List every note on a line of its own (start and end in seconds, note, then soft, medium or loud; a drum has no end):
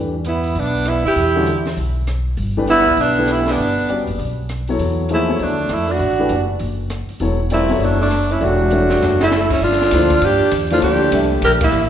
0.00 0.52 E2 medium
0.00 0.12 E3 soft
0.00 0.13 A3 soft
0.00 0.13 D4 soft
0.00 0.13 G4 soft
0.00 0.13 B4 soft
0.25 0.57 B3 medium
0.25 0.61 E4 medium
0.25 closed hi-hat soft
0.44 open hi-hat soft
0.55 1.02 B1 medium
0.55 0.87 B3 medium
0.55 open hi-hat soft
0.59 0.90 D4 medium
0.85 1.05 B3 medium
0.85 1.06 E4 medium
0.85 cross-stick medium
0.85 closed hi-hat soft
1.05 1.15 B2 medium
1.05 1.62 E4 medium
1.05 1.63 G4 medium
1.16 1.74 E2 medium
1.16 open hi-hat soft
1.35 1.46 D3 medium
1.35 1.46 G3 medium
1.35 1.46 C#4 medium
1.35 1.46 F#4 medium
1.35 1.46 A4 medium
1.46 closed hi-hat soft
1.66 snare soft
1.66 open hi-hat soft
1.77 2.34 B1 medium
1.77 open hi-hat soft
2.07 cross-stick medium
2.07 closed hi-hat soft
2.37 2.83 G1 medium
2.37 open hi-hat soft
2.57 2.67 E3 medium
2.57 2.67 A3 medium
2.57 2.67 D4 medium
2.57 2.67 G4 medium
2.57 2.68 B4 medium
2.68 2.99 B3 medium
2.68 3.02 E4 loud
2.68 closed hi-hat soft
2.86 2.96 B1 medium
2.97 3.55 B1 medium
2.97 3.30 B3 medium
2.97 3.33 D4 medium
2.97 open hi-hat soft
3.18 3.57 E3 soft
3.18 3.57 A3 medium
3.18 3.57 D4 soft
3.18 3.57 G4 medium
3.18 3.57 B4 medium
3.28 3.47 B3 medium
3.28 cross-stick medium
3.28 closed hi-hat medium
3.32 3.52 E4 medium
3.46 4.07 B3 medium
3.46 snare soft
3.46 open hi-hat soft
3.51 4.09 D4 medium
3.58 4.04 G1 medium
3.58 open hi-hat soft
3.88 4.06 G3 medium
3.88 4.06 C#4 soft
3.88 4.06 F#4 soft
3.88 4.06 B4 soft
3.88 4.06 D5 medium
3.88 closed hi-hat soft
4.07 4.18 F#1 medium
4.07 open hi-hat soft
4.18 4.76 B1 medium
4.18 open hi-hat soft
4.49 cross-stick medium
4.49 closed hi-hat soft
4.68 5.08 F#3 medium
4.68 5.08 B3 soft
4.68 5.08 E4 medium
4.68 5.08 A4 soft
4.68 5.08 C#5 medium
4.68 open hi-hat soft
4.79 5.36 E2 medium
4.79 open hi-hat soft
5.09 5.27 F3 medium
5.09 5.40 A3 medium
5.09 5.27 A#3 soft
5.09 5.27 D#4 medium
5.09 5.27 G#4 medium
5.09 5.27 C5 medium
5.09 closed hi-hat soft
5.14 5.44 E4 medium
5.28 5.55 F#3 medium
5.28 5.55 B3 soft
5.28 5.55 E4 medium
5.28 5.55 A4 soft
5.28 5.55 C#5 medium
5.39 5.68 D2 medium
5.39 5.70 A3 medium
5.39 5.75 D4 medium
5.39 open hi-hat soft
5.69 5.98 F2 medium
5.69 5.90 A3 medium
5.69 cross-stick medium
5.69 closed hi-hat soft
5.73 5.93 E4 medium
5.88 6.49 D4 medium
5.88 6.50 F#4 medium
5.88 open hi-hat soft
5.99 6.27 A1 medium
5.99 open hi-hat soft
6.19 6.29 E3 medium
6.19 6.29 A3 medium
6.19 6.29 D4 medium
6.19 6.29 G4 medium
6.19 6.30 B4 medium
6.29 6.58 F#1 medium
6.29 closed hi-hat soft
6.59 7.06 F#1 medium
6.59 open hi-hat soft
6.90 cross-stick medium
6.90 closed hi-hat soft
7.09 muted upright bass stroke soft
7.09 open hi-hat soft
7.20 7.78 E1 medium
7.20 7.38 F#3 medium
7.20 7.38 B3 soft
7.20 7.38 E4 soft
7.20 7.38 A4 medium
7.20 7.38 C#5 medium
7.20 open hi-hat soft
7.50 7.68 G3 medium
7.50 7.82 A3 medium
7.50 7.68 C4 medium
7.50 7.86 E4 medium
7.50 7.68 F4 medium
7.50 7.68 A#4 medium
7.50 7.68 D5 medium
7.50 closed hi-hat soft
7.69 7.96 F#3 medium
7.69 7.96 B3 medium
7.69 7.96 E4 medium
7.69 7.96 A4 medium
7.69 7.96 C#5 medium
7.69 open hi-hat soft
7.79 8.37 F#1 medium
7.79 8.00 A3 medium
7.79 open hi-hat soft
7.84 8.01 D4 medium
8.00 8.32 A3 medium
8.00 8.34 D4 medium
8.11 cross-stick medium
8.11 closed hi-hat soft
8.29 8.43 C#4 medium
8.29 8.45 E4 medium
8.29 open hi-hat soft
8.41 8.98 E1 medium
8.41 8.58 A3 medium
8.41 8.58 D4 medium
8.41 9.20 D4 medium
8.41 9.21 F#4 medium
8.41 8.58 G4 medium
8.41 8.58 C#5 medium
8.41 8.59 E5 medium
8.41 open hi-hat soft
8.71 9.17 G3 medium
8.71 9.17 A3 medium
8.71 9.17 D4 soft
8.71 9.17 C#5 soft
8.71 9.17 E5 medium
8.71 closed hi-hat soft
8.90 snare soft
9.01 9.59 F#1 medium
9.01 snare soft
9.20 9.49 A3 medium
9.20 9.50 E4 medium
9.20 snare medium
9.31 snare medium
9.50 9.62 C#4 medium
9.50 9.62 E4 medium
9.50 kick medium
9.50 crash medium
9.61 9.91 G1 medium
9.61 10.23 D4 medium
9.61 10.26 F4 loud
9.72 snare soft
9.82 snare soft
9.91 10.21 D2 medium
9.91 10.09 F3 medium
9.91 10.09 A#3 medium
9.91 10.09 E4 medium
9.91 10.10 A4 medium
9.91 10.10 C5 medium
9.91 snare soft
9.91 hi-hat pedal medium
9.91 ride medium
10.10 kick medium
10.10 ride soft
10.22 10.39 G2 medium
10.22 10.52 D4 medium
10.22 10.53 G4 medium
10.22 ride medium
10.40 muted upright bass stroke soft
10.51 10.81 E2 medium
10.51 hi-hat pedal medium
10.51 ride medium
10.70 11.10 F3 medium
10.70 11.10 A#3 medium
10.70 10.81 D4 medium
10.70 11.10 E4 medium
10.70 10.82 F4 medium
10.70 11.11 A4 medium
10.70 11.11 C5 medium
10.70 ride soft
10.82 11.11 D2 medium
10.82 11.28 D4 medium
10.82 11.28 G4 loud
10.82 ride medium
11.12 11.41 C2 medium
11.12 11.58 A3 medium
11.12 11.58 D4 medium
11.12 11.58 G4 medium
11.12 11.58 C5 soft
11.12 11.58 E5 medium
11.12 hi-hat pedal soft
11.12 ride medium
11.42 11.71 A#1 medium
11.42 11.52 G4 medium
11.42 11.52 A#4 medium
11.42 ride medium
11.61 11.89 A#3 medium
11.61 11.89 E4 medium
11.61 kick medium
11.61 ride medium
11.72 11.89 A1 medium
11.72 hi-hat pedal medium